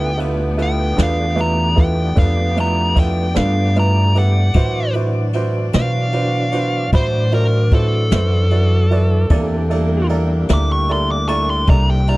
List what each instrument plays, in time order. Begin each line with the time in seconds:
Already playing: upright bass D2, tonewheel organ A3 B3 D4 G4, saxophone section B3 D5, lead electric guitar G5
0.17 upright piano E4 F4 A4 B4, ride
0.57 upright piano E4 F4 A4 B4, ride
0.62 lead electric guitar G5
0.96 upright bass E2, upright piano D4 F4 A4 B4, snare, ride
1.03 lead electric guitar F5
1.35 upright piano A3 E4 F4 B4, ride
1.41 lead electric guitar A#5
1.76 upright piano E4 F4 A4 B4, kick, ride
1.80 lead electric guitar G5
2.15 upright bass F2, upright piano D4 F4 A4 B4, kick, ride
2.19 lead electric guitar F5
2.56 upright piano A3 E4 F4 B4, ride
2.60 lead electric guitar A#5
2.95 upright piano E4 F4 A4 B4, kick, ride
2.99 lead electric guitar G5
3.35 upright bass G2, upright piano D4 F4 A4 B4, lead electric guitar F5, snare, ride
3.76 upright piano A3 E4 F4 B4, lead electric guitar A#5, ride
4.15 upright piano E4 G4 A4 B4, lead electric guitar F#5, ride
4.53 upright bass A2, tonewheel organ E3 F#3 D4, saxophone section D4 F#4, upright piano E4 F#4 B4 C5, kick, ride
4.94 upright piano E4 F#4 B4 C5, ride
5.33 upright piano E4 F#4 B4 C5, ride
5.73 upright bass B2, upright piano D4 F#4 B4 C5, lead electric guitar F5, snare, ride
6.13 upright piano D4 F#4 B4 C5, ride
6.52 upright piano D4 F#4 B4 C5, ride
6.92 upright bass A2, upright piano E4 F#4 C5 B5, lead electric guitar C5, kick, ride
7.32 upright piano E4 F#4 C5 D5, lead electric guitar A#4, ride
7.71 upright piano E4 F#4 B4 C5, lead electric guitar A4, kick, ride
8.11 upright bass F#2, upright piano E4 F#4 B4 C5, snare, ride
8.51 upright piano E4 F#4 B4 D5, ride
8.91 upright piano E4 F#4 B4 D5, ride
9.29 upright bass E2, upright piano A#3 E4 A4 D5, tonewheel organ A#3 C4 D4 E4, saxophone section A#3 D4 G4, kick, ride
9.70 tonewheel organ G3 A#3 D4 E4, upright piano A#3 E4 A4 D5, ride
10.09 upright piano E4 A4 A#4 D5, ride
10.49 upright bass D2, upright piano E4 A4 A#4 E5, snare, ride
10.53 lead electric guitar D6
10.72 lead electric guitar C#6
10.89 upright piano E4 A4 A#4 D5, lead electric guitar C6, ride
11.11 lead electric guitar D6
11.28 upright piano E4 A4 A#4 D5, lead electric guitar C#6, ride
11.50 lead electric guitar C6
11.67 upright bass C2, upright piano E4 A4 A#4 D5, saxophone section C5, lead electric guitar A#5, kick, ride
11.90 lead electric guitar G5
12.07 upright piano E4 G4 A#4 D5, lead electric guitar A#5, ride